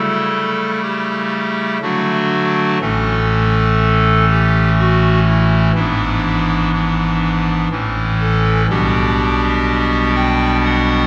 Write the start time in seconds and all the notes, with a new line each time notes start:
Already playing: C#3 G3 A3 E4 A4
0.83 G4
1.82 D3 F#3 A3 D4 F#4
2.81 A1 A2 E3 A3 C#4 A4
4.30 G4
4.79 F#4
5.27 E4
5.75 G#1 G#2 E3 B3 D4 E4
6.73 D4
7.71 A1 A2 E3 C#4 E4
8.20 A4
8.69 B1 B2 G3 B3 D4 G4
10.16 G5
10.65 F#5